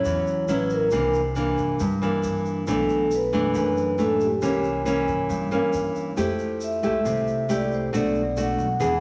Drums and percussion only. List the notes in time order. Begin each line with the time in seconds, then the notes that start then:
0.05 shaker
0.27 shaker
0.48 shaker
0.70 shaker
0.91 shaker
1.14 shaker
1.36 shaker
1.58 shaker
1.80 shaker
2.02 shaker
2.23 shaker
2.45 shaker
2.67 shaker
2.89 shaker
3.11 shaker
3.33 shaker
3.54 shaker
3.77 shaker
3.98 shaker
4.20 shaker
4.42 shaker
4.64 shaker
4.86 shaker
5.08 shaker
5.30 shaker
5.52 shaker
5.73 shaker
5.95 shaker
6.17 shaker
6.39 shaker
6.61 shaker
6.83 shaker
7.05 shaker
7.27 shaker
7.49 shaker
7.72 shaker
7.94 shaker
8.15 shaker
8.37 shaker
8.59 shaker
8.80 shaker